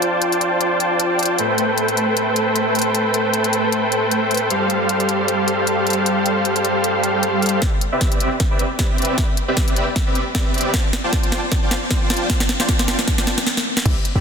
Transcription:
Already playing: F4 C5 D5 G5 A5
0.02 closed hi-hat
0.22 closed hi-hat
0.32 closed hi-hat
0.41 closed hi-hat
0.61 closed hi-hat
0.80 closed hi-hat
1.00 closed hi-hat
1.19 closed hi-hat
1.23 closed hi-hat
1.26 closed hi-hat
1.38 A3 A4 B4 C5 G5, closed hi-hat
1.58 closed hi-hat
1.78 closed hi-hat
1.88 closed hi-hat
1.97 closed hi-hat
2.17 closed hi-hat
2.36 closed hi-hat
2.56 closed hi-hat
2.75 closed hi-hat
2.79 closed hi-hat
2.82 closed hi-hat
2.95 closed hi-hat
3.14 closed hi-hat
3.34 closed hi-hat
3.44 closed hi-hat
3.53 closed hi-hat
3.72 closed hi-hat
3.92 closed hi-hat
4.11 closed hi-hat
4.31 closed hi-hat
4.34 closed hi-hat
4.37 closed hi-hat
4.50 G3 G4 A4 C5 F5, closed hi-hat
4.70 closed hi-hat
4.89 closed hi-hat
5.00 closed hi-hat
5.09 closed hi-hat
5.28 closed hi-hat
5.48 closed hi-hat
5.67 closed hi-hat
5.87 closed hi-hat
5.90 closed hi-hat
5.93 closed hi-hat
6.06 closed hi-hat
6.26 closed hi-hat
6.45 closed hi-hat
6.56 closed hi-hat
6.65 closed hi-hat
6.84 closed hi-hat
7.04 closed hi-hat
7.23 closed hi-hat
7.42 closed hi-hat
7.46 closed hi-hat
7.49 closed hi-hat
7.62 kick, snare, closed hi-hat
7.81 closed hi-hat
7.92 C4 G4 B4 D5 E5
8.01 kick, snare, closed hi-hat
8.12 closed hi-hat
8.20 C4 G4 B4 D5 E5, closed hi-hat
8.40 kick, snare, closed hi-hat
8.51 C4 G4 B4 D5 E5
8.59 closed hi-hat
8.79 C4 G4 B4 D5 E5, kick, snare, closed hi-hat
8.98 C4 G4 B4 D5 E5, closed hi-hat
9.02 closed hi-hat
9.05 closed hi-hat
9.18 kick, snare, closed hi-hat
9.37 closed hi-hat
9.48 C4 G4 B4 D5 E5
9.57 kick, snare, closed hi-hat
9.68 closed hi-hat
9.76 C4 G4 B4 D5 E5, closed hi-hat
9.96 kick, snare, closed hi-hat
10.06 C4 G4 B4 D5 E5
10.15 closed hi-hat
10.35 C4 G4 D5 E5, kick, snare, closed hi-hat
10.54 C4 G4 B4 D5 E5, closed hi-hat
10.58 closed hi-hat
10.61 closed hi-hat
10.74 kick, snare, closed hi-hat
10.93 snare, closed hi-hat
11.04 F4 C5 D5 G5 A5
11.13 kick, snare, closed hi-hat
11.23 closed hi-hat
11.32 F4 C5 D5 G5 A5, snare, closed hi-hat
11.52 kick, snare, closed hi-hat
11.62 F4 C5 D5 G5 A5
11.71 snare, closed hi-hat
11.91 F4 C5 D5, kick, snare, closed hi-hat
12.10 F4 C5 D5 G5 A5, snare, closed hi-hat
12.14 closed hi-hat
12.17 closed hi-hat
12.30 F4 C5, kick, snare, closed hi-hat
12.40 snare
12.49 snare, closed hi-hat
12.60 F4 C5 D5 G5 A5, snare
12.69 kick, snare, closed hi-hat
12.79 snare, closed hi-hat
12.88 F4 C5 D5 G5 A5, snare, closed hi-hat
12.99 snare
13.08 kick, snare, closed hi-hat
13.18 F4 C5 D5 G5 A5, snare
13.27 snare, closed hi-hat
13.38 snare
13.47 snare
13.57 snare
13.77 snare
13.85 C2 C4 G4 B4 D5 E5, kick, closed hi-hat, crash
14.05 closed hi-hat
14.15 C2 C4 G4 B4 D5 E5

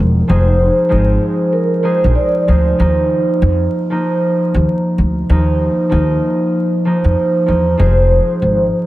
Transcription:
Already playing: F3 G#3 C4 D#4 G#4
0.00 E1
0.28 F1 F3 G#3 C4 D#4 G#4 C5
0.89 G#1 F3 G#3 C4 D#4 G#4
1.53 A#4
1.83 F3 G#3 C4 D#4 G#4 C5
2.04 A#1
2.15 D5
2.47 D2 F3 G#3 C4 D#4 G#4
2.78 D#2 F3 A#3 D#4
3.42 F2
3.90 F3 A#3 D#4
4.54 D#2
4.98 D2
5.30 D#2 F3 A#3 D#4
5.89 D#2 F3 A#3 D#4
6.85 F3 A#3 D#4
7.04 F2
7.46 E2 F3 A#3 D#4
7.78 F1 F3 G#3 C4 D#4 G#4 C5
8.42 G#1

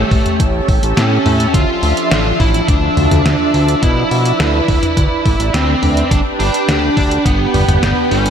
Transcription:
Already playing: A3 C#4 G4 A4 E5
0.11 A1, kick, open hi-hat
0.26 closed hi-hat, mid tom
0.40 A1, kick, closed hi-hat
0.68 A1, kick, open hi-hat
0.83 A1, closed hi-hat
0.97 A2 C#4, snare, closed hi-hat
1.26 A2, mid tom, open hi-hat
1.40 closed hi-hat
1.54 D2 F3 D4 F4, kick, closed hi-hat
1.83 D2, open hi-hat
1.97 closed hi-hat
2.11 A1 F4, snare, closed hi-hat
2.40 A1 E4, kick, open hi-hat
2.54 closed hi-hat
2.68 D2 D4, kick, closed hi-hat
2.97 D2, mid tom, open hi-hat
3.11 D2, closed hi-hat, mid tom
3.26 D2, snare, closed hi-hat
3.54 D2, open hi-hat
3.68 closed hi-hat
3.83 B2 E4 B4, kick, closed hi-hat
4.11 B2, open hi-hat
4.25 closed hi-hat
4.40 D2, snare, closed hi-hat
4.68 D2, kick, open hi-hat
4.83 closed hi-hat, mid tom
4.97 D2, kick, closed hi-hat
5.26 A1, kick, open hi-hat
5.40 A1, closed hi-hat
5.54 D2 C4, snare, closed hi-hat
5.83 D2, mid tom, open hi-hat
5.97 closed hi-hat
6.11 G1 D4 G4 B4 G5, kick, closed hi-hat
6.39 G1 D4, open hi-hat
6.54 closed hi-hat
6.68 D2, snare, closed hi-hat
6.97 D2, kick, open hi-hat
7.11 closed hi-hat
7.25 G1 B3, kick, closed hi-hat
7.54 G1, mid tom, open hi-hat
7.68 G1, closed hi-hat, mid tom
7.83 G1, snare, closed hi-hat
8.11 G1 C#4, open hi-hat
8.26 closed hi-hat

